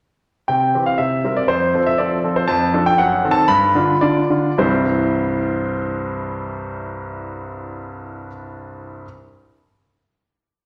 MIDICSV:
0, 0, Header, 1, 2, 480
1, 0, Start_track
1, 0, Key_signature, 0, "major"
1, 0, Tempo, 500835
1, 463, Time_signature, 2, 2, 24, 8
1, 2855, Tempo, 523560
1, 3815, Tempo, 555556
1, 9543, End_track
2, 0, Start_track
2, 0, Title_t, "Grand piano"
2, 0, Program_c, 0, 0
2, 460, Note_on_c, 0, 79, 62
2, 467, Note_on_c, 0, 48, 40
2, 701, Note_off_c, 0, 48, 0
2, 713, Note_on_c, 0, 52, 34
2, 717, Note_on_c, 0, 60, 31
2, 720, Note_on_c, 0, 67, 36
2, 790, Note_off_c, 0, 79, 0
2, 827, Note_on_c, 0, 77, 59
2, 885, Note_off_c, 0, 52, 0
2, 888, Note_off_c, 0, 60, 0
2, 890, Note_off_c, 0, 67, 0
2, 937, Note_on_c, 0, 76, 63
2, 945, Note_on_c, 0, 48, 39
2, 949, Note_off_c, 0, 77, 0
2, 1181, Note_off_c, 0, 48, 0
2, 1191, Note_on_c, 0, 55, 31
2, 1195, Note_on_c, 0, 60, 30
2, 1200, Note_on_c, 0, 70, 34
2, 1304, Note_off_c, 0, 76, 0
2, 1308, Note_on_c, 0, 74, 59
2, 1363, Note_off_c, 0, 55, 0
2, 1366, Note_off_c, 0, 60, 0
2, 1369, Note_off_c, 0, 70, 0
2, 1420, Note_on_c, 0, 72, 72
2, 1428, Note_on_c, 0, 41, 49
2, 1429, Note_off_c, 0, 74, 0
2, 1660, Note_off_c, 0, 41, 0
2, 1669, Note_on_c, 0, 53, 37
2, 1674, Note_on_c, 0, 60, 38
2, 1676, Note_on_c, 0, 69, 41
2, 1745, Note_off_c, 0, 72, 0
2, 1787, Note_on_c, 0, 76, 67
2, 1840, Note_off_c, 0, 53, 0
2, 1843, Note_off_c, 0, 60, 0
2, 1844, Note_off_c, 0, 69, 0
2, 1898, Note_on_c, 0, 74, 59
2, 1905, Note_off_c, 0, 76, 0
2, 1909, Note_on_c, 0, 53, 36
2, 1910, Note_on_c, 0, 60, 36
2, 1914, Note_on_c, 0, 69, 43
2, 2078, Note_off_c, 0, 53, 0
2, 2078, Note_off_c, 0, 60, 0
2, 2081, Note_off_c, 0, 69, 0
2, 2146, Note_on_c, 0, 53, 38
2, 2149, Note_on_c, 0, 60, 39
2, 2152, Note_on_c, 0, 69, 43
2, 2256, Note_off_c, 0, 74, 0
2, 2264, Note_on_c, 0, 72, 65
2, 2315, Note_off_c, 0, 53, 0
2, 2317, Note_off_c, 0, 60, 0
2, 2319, Note_off_c, 0, 69, 0
2, 2373, Note_on_c, 0, 81, 87
2, 2380, Note_off_c, 0, 72, 0
2, 2382, Note_on_c, 0, 41, 62
2, 2611, Note_off_c, 0, 41, 0
2, 2621, Note_on_c, 0, 53, 48
2, 2628, Note_on_c, 0, 62, 47
2, 2634, Note_on_c, 0, 69, 51
2, 2697, Note_off_c, 0, 81, 0
2, 2744, Note_on_c, 0, 79, 87
2, 2792, Note_off_c, 0, 53, 0
2, 2797, Note_off_c, 0, 62, 0
2, 2801, Note_off_c, 0, 69, 0
2, 2859, Note_on_c, 0, 78, 83
2, 2860, Note_off_c, 0, 79, 0
2, 2866, Note_on_c, 0, 42, 56
2, 3088, Note_off_c, 0, 42, 0
2, 3096, Note_on_c, 0, 51, 49
2, 3098, Note_on_c, 0, 60, 45
2, 3103, Note_on_c, 0, 69, 50
2, 3162, Note_on_c, 0, 81, 95
2, 3170, Note_off_c, 0, 78, 0
2, 3265, Note_off_c, 0, 51, 0
2, 3266, Note_off_c, 0, 60, 0
2, 3269, Note_off_c, 0, 69, 0
2, 3314, Note_on_c, 0, 83, 103
2, 3320, Note_on_c, 0, 43, 66
2, 3324, Note_off_c, 0, 81, 0
2, 3558, Note_off_c, 0, 43, 0
2, 3564, Note_on_c, 0, 50, 51
2, 3570, Note_on_c, 0, 62, 49
2, 3572, Note_on_c, 0, 65, 55
2, 3744, Note_off_c, 0, 50, 0
2, 3748, Note_off_c, 0, 62, 0
2, 3749, Note_off_c, 0, 65, 0
2, 3802, Note_on_c, 0, 74, 77
2, 3809, Note_off_c, 0, 83, 0
2, 3813, Note_on_c, 0, 50, 46
2, 3815, Note_on_c, 0, 62, 44
2, 3818, Note_on_c, 0, 65, 48
2, 3988, Note_off_c, 0, 50, 0
2, 3990, Note_off_c, 0, 62, 0
2, 3992, Note_off_c, 0, 65, 0
2, 4053, Note_on_c, 0, 50, 39
2, 4055, Note_on_c, 0, 62, 41
2, 4058, Note_on_c, 0, 65, 46
2, 4231, Note_off_c, 0, 50, 0
2, 4232, Note_off_c, 0, 62, 0
2, 4234, Note_off_c, 0, 65, 0
2, 4292, Note_on_c, 0, 36, 53
2, 4294, Note_on_c, 0, 43, 47
2, 4296, Note_off_c, 0, 74, 0
2, 4298, Note_on_c, 0, 52, 49
2, 4300, Note_on_c, 0, 72, 63
2, 4301, Note_on_c, 0, 55, 50
2, 4301, Note_on_c, 0, 60, 47
2, 4303, Note_on_c, 0, 64, 46
2, 4503, Control_c, 0, 64, 127
2, 7477, Note_off_c, 0, 36, 0
2, 7478, Note_off_c, 0, 43, 0
2, 7480, Note_off_c, 0, 52, 0
2, 7481, Note_off_c, 0, 55, 0
2, 7481, Note_off_c, 0, 72, 0
2, 7482, Note_off_c, 0, 60, 0
2, 7482, Note_off_c, 0, 64, 0
2, 8153, Control_c, 0, 64, 0
2, 9543, End_track
0, 0, End_of_file